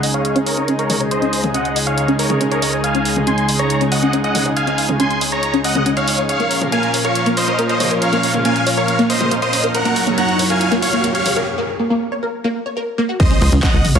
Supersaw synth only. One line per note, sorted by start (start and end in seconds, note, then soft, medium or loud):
0.14 0.36 C#5 medium
0.14 0.36 F5 medium
0.46 0.69 A#4 medium
0.46 0.69 C#5 medium
0.79 1.01 A#4 medium
0.79 1.01 C#5 medium
1.11 1.41 C5 medium
1.11 1.41 D#5 loud
1.54 1.76 D#5 medium
1.54 1.76 F#5 medium
1.87 2.09 C#5 medium
1.87 2.09 F5 medium
2.19 2.41 A#4 medium
2.19 2.41 C#5 medium
2.51 2.74 A#4 medium
2.51 2.74 C#5 loud
2.84 3.13 F5 medium
2.84 3.13 G#5 loud
3.27 3.49 G#5 medium
3.27 3.49 C6 loud
3.59 3.81 C#5 medium
3.59 3.81 A#5 medium
3.92 4.14 D#5 medium
3.92 4.14 F#5 medium
4.24 4.46 D#5 medium
4.24 4.46 F#5 loud
4.56 4.86 F5 medium
4.56 4.86 G#5 loud
5.00 5.22 G#5 medium
5.00 5.22 C6 loud
5.32 5.54 C#5 medium
5.32 5.54 A#5 medium
5.64 5.87 D#5 medium
5.64 5.87 F#5 medium
5.97 6.19 C#5 medium
5.97 6.19 F5 medium
6.29 6.59 C#5 medium
6.29 6.59 F5 loud
6.72 6.94 F5 medium
6.72 6.94 G#5 loud
7.05 7.27 C#5 medium
7.05 7.27 F5 medium
7.37 7.59 C5 medium
7.37 7.59 D#5 loud
7.70 7.92 C5 medium
7.70 7.92 D#5 loud
8.02 8.31 C#5 medium
8.02 8.31 F5 loud
8.45 8.67 F5 medium
8.45 8.67 G#5 loud
8.77 9.00 C#5 medium
8.77 9.00 F5 medium
9.10 9.32 C5 medium
9.10 9.32 D#5 medium
9.42 9.64 C5 medium
9.42 9.64 D#5 loud
9.75 10.04 A#4 medium
9.75 10.04 F#5 loud
10.18 10.40 F#5 medium
10.18 10.40 A#5 loud
10.50 10.72 F5 medium
10.50 10.72 G#5 medium
10.82 11.05 C#5 medium
10.82 11.05 F5 loud
11.15 11.37 C#5 medium
11.15 11.37 F5 loud
13.20 13.49 C5 medium
13.20 13.49 D#5 loud
13.63 13.85 D#5 medium
13.63 13.85 F#5 loud
13.95 13.99 C#5 medium
13.95 13.99 F5 medium